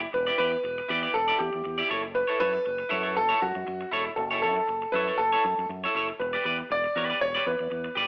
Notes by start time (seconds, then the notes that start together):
0.01 muted clean electric guitar stroke
0.12 E1 B4, muted clean electric guitar stroke
0.27 E4 G4 D5
0.38 E2 E4 G4 B4 D5
0.52 muted clean electric guitar stroke
0.64 E1, muted clean electric guitar stroke
0.78 muted clean electric guitar stroke
0.88 E2 E4 G4 D5
1.03 E4 G4 D5
1.14 E1 A4, muted clean electric guitar stroke
1.28 E4 G4 D5
1.39 E2 G4, muted clean electric guitar stroke
1.53 E2, muted clean electric guitar stroke
1.64 E2, muted clean electric guitar stroke
1.78 E4 G4 D5
1.89 F#1 E4 A4 C#5
2.03 muted clean electric guitar stroke
2.14 B4, muted clean electric guitar stroke
2.28 E4 A4 C#5
2.39 F#2 E4 A4 B4 C#5
2.53 muted clean electric guitar stroke
2.65 F#1, muted clean electric guitar stroke
2.78 muted clean electric guitar stroke
2.89 F#2 E4 A4 C#5
3.03 E4 A4 C#5
3.16 F#1 A4, muted clean electric guitar stroke
3.29 E4 A4 C#5
3.40 F#2 F#4, muted clean electric guitar stroke
3.55 F#2, muted clean electric guitar stroke
3.67 F#2, muted clean electric guitar stroke
3.81 muted clean electric guitar stroke
3.92 E1 E4 A4 C#5
4.05 muted clean electric guitar stroke
4.16 F#1 A4, muted clean electric guitar stroke
4.31 E4 A4 C#5
4.42 F#2 E4 A4 C#5
4.57 muted clean electric guitar stroke
4.67 F#1, muted clean electric guitar stroke
4.82 muted clean electric guitar stroke
4.92 F#2 E4 A4 B4 C#5
5.08 E4 A4 C#5
5.18 F#1 A4, muted clean electric guitar stroke
5.32 E4 A4 C#5
5.44 F#2, muted clean electric guitar stroke
5.58 F#2, muted clean electric guitar stroke
5.69 F#2, muted clean electric guitar stroke
5.84 E4 A4 C#5
5.95 F#1 E4 A4 C#5
6.09 muted clean electric guitar stroke
6.19 E1 B4, muted clean electric guitar stroke
6.33 G4 B4 D5
6.44 E2 G4 B4 D5
6.59 muted clean electric guitar stroke
6.70 E1 D5, muted clean electric guitar stroke
6.84 muted clean electric guitar stroke
6.96 E2 G4 B4 D5
7.10 G4 B4 D5
7.21 E1 C#5, muted clean electric guitar stroke
7.35 G4 B4 D5
7.46 E2 B4, muted clean electric guitar stroke
7.59 E2, muted clean electric guitar stroke
7.70 E2, muted clean electric guitar stroke
7.84 muted clean electric guitar stroke
7.95 F#1 G4 B4 D5